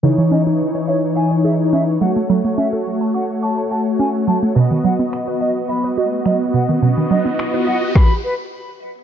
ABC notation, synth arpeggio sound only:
X:1
M:4/4
L:1/16
Q:1/4=106
K:C#m
V:1 name="Synth arpeggio sound"
C, E, C D z c e z e c G z C z F, A, | F, A, C A z a c' z c' a f z C z F, A, | B,, D, F, B, z B d z d B F z F, z B,, D, | B,, D, F, B, z B d z8 z |]